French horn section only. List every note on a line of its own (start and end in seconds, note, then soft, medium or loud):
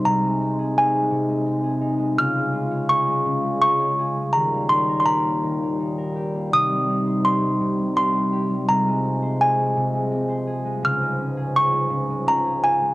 0.00 2.15 C3 medium
0.06 4.30 G#3 medium
0.06 2.17 D#4 medium
2.19 4.32 C#3 medium
2.19 4.32 F4 medium
4.36 6.50 D#2 medium
4.36 6.50 A#2 medium
4.36 8.66 G3 medium
6.52 10.81 C3 medium
6.52 8.67 D#4 medium
8.70 12.94 F3 medium
8.70 10.83 G#3 medium
10.84 12.94 C#2 medium
10.84 12.94 G#2 medium